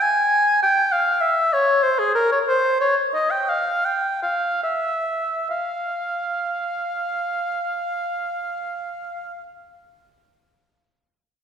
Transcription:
0, 0, Header, 1, 2, 480
1, 0, Start_track
1, 0, Key_signature, -4, "minor"
1, 0, Tempo, 605449
1, 959, Time_signature, 3, 2, 24, 8
1, 1443, Tempo, 657174
1, 2403, Tempo, 710900
1, 2883, Tempo, 781250
1, 3363, Tempo, 878477
1, 4803, Tempo, 859599
1, 7133, End_track
2, 0, Start_track
2, 0, Title_t, "Oboe"
2, 0, Program_c, 0, 68
2, 13, Note_on_c, 0, 80, 100
2, 489, Note_off_c, 0, 80, 0
2, 496, Note_on_c, 0, 79, 104
2, 730, Note_on_c, 0, 77, 83
2, 742, Note_off_c, 0, 79, 0
2, 959, Note_on_c, 0, 76, 82
2, 971, Note_off_c, 0, 77, 0
2, 1213, Note_on_c, 0, 73, 87
2, 1225, Note_off_c, 0, 76, 0
2, 1450, Note_on_c, 0, 72, 74
2, 1461, Note_off_c, 0, 73, 0
2, 1565, Note_on_c, 0, 68, 69
2, 1576, Note_off_c, 0, 72, 0
2, 1678, Note_off_c, 0, 68, 0
2, 1682, Note_on_c, 0, 70, 70
2, 1795, Note_off_c, 0, 70, 0
2, 1807, Note_on_c, 0, 73, 70
2, 1858, Note_off_c, 0, 73, 0
2, 1927, Note_on_c, 0, 72, 77
2, 2160, Note_off_c, 0, 72, 0
2, 2165, Note_on_c, 0, 73, 77
2, 2274, Note_off_c, 0, 73, 0
2, 2408, Note_on_c, 0, 75, 73
2, 2520, Note_on_c, 0, 79, 66
2, 2530, Note_off_c, 0, 75, 0
2, 2640, Note_on_c, 0, 77, 71
2, 2650, Note_off_c, 0, 79, 0
2, 2886, Note_on_c, 0, 79, 72
2, 2895, Note_off_c, 0, 77, 0
2, 3112, Note_off_c, 0, 79, 0
2, 3116, Note_on_c, 0, 77, 62
2, 3358, Note_off_c, 0, 77, 0
2, 3367, Note_on_c, 0, 76, 65
2, 3832, Note_off_c, 0, 76, 0
2, 3840, Note_on_c, 0, 77, 57
2, 6014, Note_off_c, 0, 77, 0
2, 7133, End_track
0, 0, End_of_file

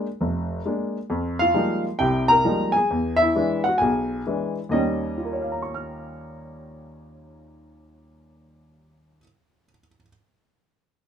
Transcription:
0, 0, Header, 1, 2, 480
1, 0, Start_track
1, 0, Tempo, 451467
1, 1163, Time_signature, 4, 2, 24, 8
1, 11776, End_track
2, 0, Start_track
2, 0, Title_t, "Grand piano"
2, 0, Program_c, 0, 0
2, 220, Note_on_c, 0, 29, 62
2, 629, Note_off_c, 0, 29, 0
2, 697, Note_on_c, 0, 56, 50
2, 700, Note_on_c, 0, 58, 42
2, 707, Note_on_c, 0, 62, 53
2, 1027, Note_off_c, 0, 56, 0
2, 1028, Note_off_c, 0, 58, 0
2, 1032, Note_off_c, 0, 62, 0
2, 1167, Note_on_c, 0, 41, 62
2, 1482, Note_on_c, 0, 77, 100
2, 1504, Note_on_c, 0, 65, 71
2, 1582, Note_off_c, 0, 41, 0
2, 1639, Note_on_c, 0, 53, 51
2, 1640, Note_on_c, 0, 55, 45
2, 1643, Note_on_c, 0, 56, 46
2, 1645, Note_on_c, 0, 63, 54
2, 1646, Note_on_c, 0, 58, 44
2, 1928, Note_off_c, 0, 77, 0
2, 1940, Note_off_c, 0, 65, 0
2, 1977, Note_off_c, 0, 53, 0
2, 1978, Note_off_c, 0, 55, 0
2, 1979, Note_off_c, 0, 56, 0
2, 1980, Note_off_c, 0, 63, 0
2, 1981, Note_off_c, 0, 58, 0
2, 2113, Note_on_c, 0, 79, 91
2, 2125, Note_on_c, 0, 48, 64
2, 2132, Note_on_c, 0, 36, 59
2, 2133, Note_on_c, 0, 67, 69
2, 2426, Note_off_c, 0, 67, 0
2, 2427, Note_on_c, 0, 82, 104
2, 2448, Note_off_c, 0, 79, 0
2, 2459, Note_on_c, 0, 70, 66
2, 2540, Note_off_c, 0, 48, 0
2, 2544, Note_off_c, 0, 36, 0
2, 2602, Note_on_c, 0, 53, 47
2, 2605, Note_on_c, 0, 55, 45
2, 2605, Note_on_c, 0, 56, 43
2, 2605, Note_on_c, 0, 58, 43
2, 2606, Note_on_c, 0, 63, 49
2, 2894, Note_on_c, 0, 80, 79
2, 2898, Note_off_c, 0, 70, 0
2, 2929, Note_off_c, 0, 82, 0
2, 2938, Note_off_c, 0, 53, 0
2, 2940, Note_off_c, 0, 55, 0
2, 2940, Note_off_c, 0, 56, 0
2, 2940, Note_off_c, 0, 58, 0
2, 2940, Note_off_c, 0, 63, 0
2, 2941, Note_on_c, 0, 68, 68
2, 3090, Note_on_c, 0, 40, 61
2, 3353, Note_off_c, 0, 80, 0
2, 3365, Note_on_c, 0, 76, 97
2, 3378, Note_off_c, 0, 68, 0
2, 3425, Note_on_c, 0, 64, 64
2, 3503, Note_off_c, 0, 40, 0
2, 3567, Note_on_c, 0, 56, 49
2, 3568, Note_on_c, 0, 52, 54
2, 3574, Note_on_c, 0, 62, 58
2, 3828, Note_off_c, 0, 76, 0
2, 3860, Note_off_c, 0, 64, 0
2, 3869, Note_on_c, 0, 78, 80
2, 3901, Note_off_c, 0, 52, 0
2, 3901, Note_off_c, 0, 56, 0
2, 3904, Note_off_c, 0, 62, 0
2, 3920, Note_on_c, 0, 66, 54
2, 4018, Note_on_c, 0, 80, 72
2, 4023, Note_off_c, 0, 78, 0
2, 4050, Note_off_c, 0, 66, 0
2, 4052, Note_on_c, 0, 35, 64
2, 4066, Note_on_c, 0, 68, 55
2, 4464, Note_off_c, 0, 35, 0
2, 4536, Note_on_c, 0, 52, 46
2, 4544, Note_on_c, 0, 56, 39
2, 4546, Note_on_c, 0, 62, 49
2, 4788, Note_off_c, 0, 80, 0
2, 4812, Note_off_c, 0, 68, 0
2, 4865, Note_off_c, 0, 52, 0
2, 4869, Note_off_c, 0, 56, 0
2, 4870, Note_off_c, 0, 62, 0
2, 4990, Note_on_c, 0, 39, 57
2, 5003, Note_on_c, 0, 51, 52
2, 5013, Note_on_c, 0, 75, 71
2, 5017, Note_on_c, 0, 55, 54
2, 5029, Note_on_c, 0, 61, 64
2, 5503, Note_on_c, 0, 65, 38
2, 5580, Note_on_c, 0, 70, 35
2, 5668, Note_on_c, 0, 73, 37
2, 5761, Note_on_c, 0, 77, 34
2, 5867, Note_on_c, 0, 82, 33
2, 5980, Note_on_c, 0, 85, 34
2, 6107, Note_on_c, 0, 89, 29
2, 9747, Note_off_c, 0, 75, 0
2, 9766, Note_off_c, 0, 39, 0
2, 9779, Note_off_c, 0, 51, 0
2, 9793, Note_off_c, 0, 55, 0
2, 9806, Note_off_c, 0, 61, 0
2, 10237, Note_off_c, 0, 65, 0
2, 10314, Note_off_c, 0, 70, 0
2, 10402, Note_off_c, 0, 73, 0
2, 10495, Note_off_c, 0, 77, 0
2, 10587, Note_off_c, 0, 82, 0
2, 10644, Note_off_c, 0, 85, 0
2, 10707, Note_off_c, 0, 89, 0
2, 11776, End_track
0, 0, End_of_file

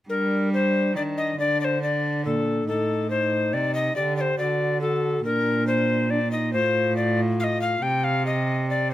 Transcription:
0, 0, Header, 1, 4, 480
1, 0, Start_track
1, 0, Key_signature, -2, "minor"
1, 0, Tempo, 430108
1, 102, Time_signature, 3, 2, 24, 8
1, 9973, End_track
2, 0, Start_track
2, 0, Title_t, "Recorder"
2, 0, Program_c, 0, 74
2, 105, Note_on_c, 0, 70, 74
2, 551, Note_off_c, 0, 70, 0
2, 597, Note_on_c, 0, 72, 79
2, 1062, Note_off_c, 0, 72, 0
2, 1072, Note_on_c, 0, 74, 80
2, 1139, Note_off_c, 0, 74, 0
2, 1312, Note_on_c, 0, 75, 83
2, 1545, Note_off_c, 0, 75, 0
2, 1556, Note_on_c, 0, 74, 89
2, 1787, Note_off_c, 0, 74, 0
2, 1797, Note_on_c, 0, 74, 71
2, 1835, Note_on_c, 0, 72, 77
2, 1847, Note_off_c, 0, 74, 0
2, 2028, Note_off_c, 0, 72, 0
2, 2038, Note_on_c, 0, 74, 69
2, 2503, Note_off_c, 0, 74, 0
2, 2509, Note_on_c, 0, 69, 80
2, 2978, Note_off_c, 0, 69, 0
2, 2993, Note_on_c, 0, 69, 76
2, 3456, Note_off_c, 0, 69, 0
2, 3463, Note_on_c, 0, 72, 76
2, 3943, Note_on_c, 0, 74, 84
2, 3960, Note_off_c, 0, 72, 0
2, 4175, Note_off_c, 0, 74, 0
2, 4182, Note_on_c, 0, 75, 85
2, 4412, Note_off_c, 0, 75, 0
2, 4418, Note_on_c, 0, 74, 85
2, 4642, Note_off_c, 0, 74, 0
2, 4648, Note_on_c, 0, 74, 70
2, 4696, Note_on_c, 0, 72, 76
2, 4708, Note_off_c, 0, 74, 0
2, 4886, Note_off_c, 0, 72, 0
2, 4892, Note_on_c, 0, 74, 71
2, 5361, Note_off_c, 0, 74, 0
2, 5367, Note_on_c, 0, 69, 81
2, 5841, Note_off_c, 0, 69, 0
2, 5853, Note_on_c, 0, 70, 86
2, 6324, Note_off_c, 0, 70, 0
2, 6330, Note_on_c, 0, 72, 80
2, 6811, Note_on_c, 0, 74, 87
2, 6828, Note_off_c, 0, 72, 0
2, 7042, Note_off_c, 0, 74, 0
2, 7049, Note_on_c, 0, 75, 84
2, 7281, Note_off_c, 0, 75, 0
2, 7288, Note_on_c, 0, 72, 82
2, 7761, Note_off_c, 0, 72, 0
2, 7774, Note_on_c, 0, 74, 80
2, 8039, Note_off_c, 0, 74, 0
2, 8255, Note_on_c, 0, 77, 86
2, 8302, Note_on_c, 0, 75, 94
2, 8313, Note_off_c, 0, 77, 0
2, 8490, Note_off_c, 0, 75, 0
2, 8498, Note_on_c, 0, 77, 88
2, 8732, Note_on_c, 0, 79, 91
2, 8749, Note_off_c, 0, 77, 0
2, 8973, Note_on_c, 0, 77, 103
2, 8989, Note_off_c, 0, 79, 0
2, 9215, Note_off_c, 0, 77, 0
2, 9224, Note_on_c, 0, 75, 81
2, 9694, Note_off_c, 0, 75, 0
2, 9707, Note_on_c, 0, 74, 80
2, 9941, Note_off_c, 0, 74, 0
2, 9973, End_track
3, 0, Start_track
3, 0, Title_t, "Trombone"
3, 0, Program_c, 1, 57
3, 97, Note_on_c, 1, 62, 52
3, 1017, Note_off_c, 1, 62, 0
3, 1063, Note_on_c, 1, 62, 58
3, 1536, Note_off_c, 1, 62, 0
3, 1549, Note_on_c, 1, 62, 61
3, 2019, Note_off_c, 1, 62, 0
3, 2033, Note_on_c, 1, 62, 49
3, 2500, Note_off_c, 1, 62, 0
3, 2510, Note_on_c, 1, 62, 64
3, 2988, Note_on_c, 1, 63, 61
3, 3004, Note_off_c, 1, 62, 0
3, 3459, Note_off_c, 1, 63, 0
3, 3465, Note_on_c, 1, 63, 59
3, 4404, Note_off_c, 1, 63, 0
3, 4425, Note_on_c, 1, 67, 61
3, 4901, Note_on_c, 1, 66, 56
3, 4917, Note_off_c, 1, 67, 0
3, 5369, Note_off_c, 1, 66, 0
3, 5375, Note_on_c, 1, 66, 65
3, 5845, Note_off_c, 1, 66, 0
3, 5852, Note_on_c, 1, 62, 54
3, 6767, Note_off_c, 1, 62, 0
3, 6811, Note_on_c, 1, 62, 65
3, 6920, Note_off_c, 1, 62, 0
3, 7054, Note_on_c, 1, 63, 60
3, 7289, Note_off_c, 1, 63, 0
3, 7299, Note_on_c, 1, 65, 69
3, 8708, Note_off_c, 1, 65, 0
3, 8732, Note_on_c, 1, 67, 61
3, 9205, Note_off_c, 1, 67, 0
3, 9217, Note_on_c, 1, 67, 61
3, 9973, Note_off_c, 1, 67, 0
3, 9973, End_track
4, 0, Start_track
4, 0, Title_t, "Cello"
4, 0, Program_c, 2, 42
4, 99, Note_on_c, 2, 55, 63
4, 1062, Note_on_c, 2, 51, 53
4, 1079, Note_off_c, 2, 55, 0
4, 1540, Note_off_c, 2, 51, 0
4, 1546, Note_on_c, 2, 50, 60
4, 2515, Note_on_c, 2, 46, 55
4, 2532, Note_off_c, 2, 50, 0
4, 2981, Note_off_c, 2, 46, 0
4, 2987, Note_on_c, 2, 45, 65
4, 3943, Note_on_c, 2, 48, 56
4, 3959, Note_off_c, 2, 45, 0
4, 4414, Note_off_c, 2, 48, 0
4, 4420, Note_on_c, 2, 50, 56
4, 4891, Note_off_c, 2, 50, 0
4, 4898, Note_on_c, 2, 50, 55
4, 5836, Note_off_c, 2, 50, 0
4, 5854, Note_on_c, 2, 46, 76
4, 7291, Note_on_c, 2, 45, 76
4, 7308, Note_off_c, 2, 46, 0
4, 8730, Note_off_c, 2, 45, 0
4, 8737, Note_on_c, 2, 48, 70
4, 9973, Note_off_c, 2, 48, 0
4, 9973, End_track
0, 0, End_of_file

